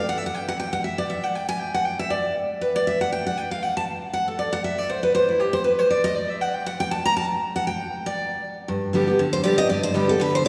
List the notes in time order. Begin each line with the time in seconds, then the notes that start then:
0.09 F#5
0.18 E5
0.26 F#5
0.35 G5
0.48 F#5
0.60 G5
0.73 F#5
0.84 E5
0.98 D5
1.10 E5
1.24 F#5
1.35 G5
1.49 G#5
1.60 G5
1.74 F#5
1.86 G5
1.99 E5
2.10 D5
2.61 B4
2.76 D5
2.87 E5
3.01 F#5
3.12 G5
3.27 F#5
3.37 G5
3.51 F5
3.63 F#5
3.77 A5
4.13 F#5
4.28 A4
4.39 D5
4.53 F#5
4.64 E5
4.78 D5
4.89 C5
5.03 B4
5.15 C5
5.29 E4
5.39 G4
5.53 C5
5.64 B4
5.79 C5
5.90 D5
6.04 D#5
6.16 D5
6.30 E5
6.41 F#5
6.55 G5
6.66 F#5
6.80 G5
6.91 A5
7.05 A#5
7.17 A5
7.56 F#5
7.67 G5
8.06 D5
8.68 G2
8.93 D3 G3 B3 G4
9.07 B3 G4
9.19 D3
9.33 C5
9.43 D3 G3 B3 G4 D5
9.58 B3 G4 D#5
9.69 G2 D5
9.83 C5
9.94 D3 G3 B3 G4 B4
10.08 B3 G4 A4
10.20 D3 B4
10.35 C5
10.45 D3